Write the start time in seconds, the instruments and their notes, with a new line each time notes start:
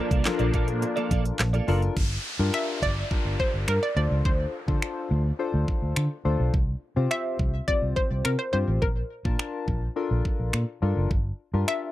Already playing: supersaw synth F3 A#3 D4, synth keys D4 F4 A4 A#4, synth pluck D5
0.10 fingered electric bass C2, clean electric guitar A#3 F4 A4 D5, kick, closed hi-hat
0.25 synth keys D4 F4 A4 A#4, muted clean electric guitar stroke, snare, clap, closed hi-hat
0.39 fingered electric bass A#1, clean electric guitar A#3 F4 A4 D5, closed hi-hat
0.53 fingered electric bass A#2, clean electric guitar A#3 F4 A4 D5, synth keys D4 F4 A4 A#4, kick, closed hi-hat
0.68 muted clean electric guitar stroke, closed hi-hat
0.82 muted clean electric guitar stroke, closed hi-hat
0.96 clean electric guitar A#3 F4 A4 D5, closed hi-hat
1.10 fingered electric bass A#1, clean electric guitar A#3 F4 A4 D5, kick, closed hi-hat
1.25 muted clean electric guitar stroke, closed hi-hat
1.39 fingered electric bass A#1, muted clean electric guitar stroke, snare, clap, closed hi-hat
1.53 clean electric guitar A#3 F4 A4 D5, closed hi-hat
1.67 fingered electric bass F#1, clean electric guitar A#3 F4 A4 D5, synth keys D4 F4 A4 A#4, open hi-hat
1.82 muted clean electric guitar stroke, closed hi-hat
1.97 fingered electric bass G1, kick, crash, downlifter
2.39 fingered electric bass G2, synth keys D4 F4 G4 A#4
2.54 synth pluck E5, finger snap
2.82 fingered electric bass G1, synth pluck D5, kick
3.11 synth keys D4 F4 G4 A#4, kick
3.25 fingered electric bass G1
3.40 synth pluck C5, kick
3.54 fingered electric bass G1
3.68 fingered electric bass G2, synth pluck A#4, finger snap
3.83 synth pluck D5
3.96 fingered electric bass D2, synth keys D4 F4 A4 C5, synth pluck D5
4.11 fingered electric bass C#2
4.25 fingered electric bass D2, synth pluck C5, kick
4.68 fingered electric bass D3, synth keys D4 F4 A4 C5, kick
4.82 finger snap
5.11 fingered electric bass D2
5.39 synth keys D4 F4 A4 C5
5.54 fingered electric bass D2
5.68 kick
5.82 fingered electric bass D2
5.96 fingered electric bass D3, finger snap
6.25 fingered electric bass D2, synth keys D4 F4 A4 C5
6.40 fingered electric bass B1
6.54 fingered electric bass C2, kick
6.96 fingered electric bass C3, synth keys C4 F4 G4 C5
7.11 synth pluck E5, finger snap
7.39 fingered electric bass C2, kick
7.68 synth keys C4 F4 G4 C5, synth pluck D5, kick
7.82 fingered electric bass C2
7.96 synth pluck C5, kick
8.11 fingered electric bass C2
8.25 fingered electric bass C3, synth pluck A#4, finger snap
8.39 synth pluck C5
8.53 fingered electric bass G2, synth keys C4 F4 G4 C5, synth pluck C5
8.68 fingered electric bass A1
8.82 synth pluck A#4, kick
9.25 fingered electric bass A#2, synth keys D4 F4 A#4 A5, kick
9.39 finger snap
9.68 fingered electric bass A#1, kick
9.96 synth keys D4 F4 A4 A#4
10.11 fingered electric bass A#1
10.25 kick
10.40 fingered electric bass A#1
10.53 fingered electric bass A#2, finger snap
10.82 fingered electric bass G2, synth keys D4 F4 A4 A#4
10.96 fingered electric bass F#1
11.11 fingered electric bass G1, kick
11.53 fingered electric bass G2, synth keys D4 F4 G4 A#4
11.68 synth pluck E5, finger snap